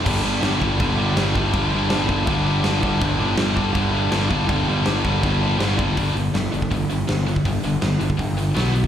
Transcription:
<<
  \new Staff \with { instrumentName = "Distorted electric guitar" } { \clef bass \time 4/4 \key g \major \tempo 4 = 162 <g, d g>8 <g, d g>8 <g, d g>8 <g, d g>8 <g, d g>8 <g, d g>8 <g, d g>8 <g, d g>8 | <g, d g>8 <g, d g>8 <g, d g>8 <g, d g>8 <g, d g>8 <g, d g>8 <g, d g>8 <g, d g>8 | <g, d g>8 <g, d g>8 <g, d g>8 <g, d g>8 <g, d g>8 <g, d g>8 <g, d g>8 <g, d g>8 | <g, d g>8 <g, d g>8 <g, d g>8 <g, d g>8 <g, d g>8 <g, d g>8 <g, d g>8 <g, d g>8 |
<g, d g>8 <g, d>8 <g, d>8 <g, d>8 <g, d>8 <g, d>8 <g, d>8 <g, d>8 | <g, d>8 <g, d>8 <g, d>8 <g, d>8 <g, d>8 <g, d>8 <b, fis b>8 <b, fis>8 | }
  \new Staff \with { instrumentName = "Picked electric bass" } { \clef bass \time 4/4 \key g \major g,,8 g,,8 g,,8 g,,8 g,,4 g,,8 g,,8 | g,,8 g,,8 g,,8 g,,8 g,,4 g,,8 g,,8 | g,,8 g,,8 g,,8 g,,8 g,,4 g,,8 g,,8 | g,,8 g,,8 g,,8 g,,8 g,,4 g,,8 g,,8 |
g,,8 g,,8 g,,8 g,,8 g,,8 g,,8 g,,4 | g,,8 g,,8 g,,8 g,,8 g,,4 b,,4 | }
  \new DrumStaff \with { instrumentName = "Drums" } \drummode { \time 4/4 <cymc bd>4 <cymc sn>8 bd8 <cymc bd>4 <cymc sn>8 bd8 | <cymc bd>4 <cymc sn>8 bd8 <cymc bd>4 <cymc sn>8 bd8 | <cymc bd>4 <cymc sn>8 bd8 <cymc bd>4 <cymc sn>8 bd8 | <cymc bd>4 <cymc sn>8 bd8 <cymc bd>4 <cymc sn>8 bd8 |
<hho bd>8 hho8 <hho sn>8 hho16 bd16 <hho bd>8 hho8 <hho sn>8 hho16 bd16 | <hho bd>8 hho8 <hho sn>8 hho16 bd16 <hho bd>8 hho8 <hho sn>8 hho16 bd16 | }
>>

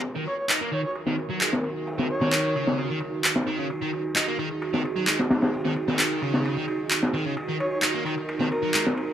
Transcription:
<<
  \new Staff \with { instrumentName = "Soft synth lead" } { \time 4/4 \key ees \minor \tempo 4 = 131 r8 des''16 des''16 r8 des''16 des''16 r2 | r8 des''4. r2 | r1 | r1 |
r8 des''16 des''16 r4. bes'8. r8. | }
  \new Staff \with { instrumentName = "Analog synth pad" } { \time 4/4 \key ees \minor << { bes'1~ | bes'1 | aes'1~ | aes'1 |
bes'1 | } \\ { <ees ees' ges'>1~ | <ees ees' ges'>1~ | <ees ees' ges'>1~ | <ees ees' ges'>1~ |
<ees ees' ges'>1 | } >> }
  \new Staff \with { instrumentName = "Overdriven electric guitar" } { \clef bass \time 4/4 \key ees \minor r16 ees16 r8 ees'16 bes16 ees16 r8 ees16 r16 ges16 aes16 r8. | r16 ees16 r16 ees8. des8. ees16 r4 ees16 des16 | r16 ees16 r8 ees'16 bes16 ees16 r8 ees16 r16 ges16 aes16 r8. | r16 ees16 r16 ees8. des8. ees16 r4 ees16 des16 |
r16 ees16 r8 ees'16 bes16 ees16 r8 ees16 r16 ges16 aes16 r8. | }
  \new DrumStaff \with { instrumentName = "Drums" } \drummode { \time 4/4 cymr8 cymr8 <hc cymr>8 cymr16 cymr16 cymr16 sn16 cymr8 <hc cymr>16 sn16 cymr8 | hho16 sn16 cymr16 sn16 <hc cymr>8 cymr16 sn16 cymr8 cymr8 <hc cymr>16 sn16 cymr8 | cymr8 cymr8 <hc cymr>8 cymr16 cymr16 cymr16 sn16 cymr8 <hc cymr>16 sn16 <cymr sn>16 <cymr sn>16 | hho16 sn16 cymr16 sn16 <hc cymr>8 cymr16 sn16 cymr8 cymr8 <hc cymr>16 sn16 cymr8 |
cymr8 cymr8 <hc cymr>8 cymr16 cymr16 cymr16 sn16 cymr8 <hc cymr>16 sn16 cymr8 | }
>>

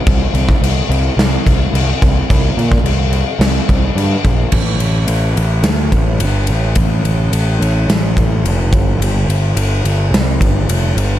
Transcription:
<<
  \new Staff \with { instrumentName = "Picked electric bass" } { \clef bass \time 4/4 \key c \mixolydian \tempo 4 = 107 c,8 c,8 c,8 c,8 c,8 c,8 c,8 c,8 | c,8 bes,8 c,4 c,8 c,8 g,8 bes,,8 | a,,8 a,,8 a,,8 a,,8 d,8 a,,8 g,,8 a,,8 | a,,8 a,,8 a,,8 a,,8 a,,8 a,,8 f,,8 g,,8 |
g,,8 g,,8 g,,8 g,,8 c,8 g,,8 f,,8 g,,8 | }
  \new DrumStaff \with { instrumentName = "Drums" } \drummode { \time 4/4 <cymc bd>8 cymc16 <bd sn>16 cymc8 cymc8 <cymc sn>8 <cymc bd>8 cymc8 <cymc bd>8 | <cymc bd>8 cymc16 <bd sn>16 cymc8 cymc8 <cymc sn>8 <cymc bd>8 cymc8 <cymc bd>8 | <cymc bd>8 cymr8 cymr8 cymr8 <cymr sn>8 <bd cymr>8 cymr8 cymr8 | <bd cymr>8 cymr8 cymr8 cymr8 <cymr sn>8 <bd cymr>8 cymr8 <bd cymr>8 |
cymr8 cymr8 cymr8 cymr8 <cymr sn>8 <bd cymr>8 cymr8 cymr8 | }
>>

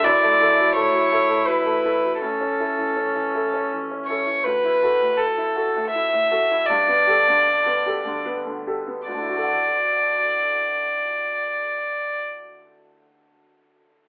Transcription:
<<
  \new Staff \with { instrumentName = "Violin" } { \time 3/4 \key d \major \tempo 4 = 79 d''4 cis''4 b'4 | a'2 r8 cis''8 | b'4 a'4 e''4 | d''2 r4 |
d''2.~ | d''2. | }
  \new Staff \with { instrumentName = "Upright piano" } { \time 3/4 \key d \major fis,16 a16 <e' a'>16 fis16 a16 fis16 <e' a'>16 a16 fis16 a16 <e' a'>16 fis16 | a,16 cis'16 <e' a'>16 e16 cis'16 e16 <e' a'>16 cis'16 e16 cis'16 <e' a'>16 e16 | d,16 e'16 <fis' a'>16 a,8 e'16 <fis' a'>16 a,16 e'16 a,16 <fis' a'>16 e'16 | g,16 b16 <g' a'>16 d8 b16 <g' a'>16 d16 b16 d16 <g' a'>16 b16 |
<d, d e' fis' a' fis''>2.~ | <d, d e' fis' a' fis''>2. | }
  \new Staff \with { instrumentName = "Viola" } { \time 3/4 \key d \major e'2. | cis'2~ cis'8 r8 | r2. | r2. |
r2. | r2. | }
>>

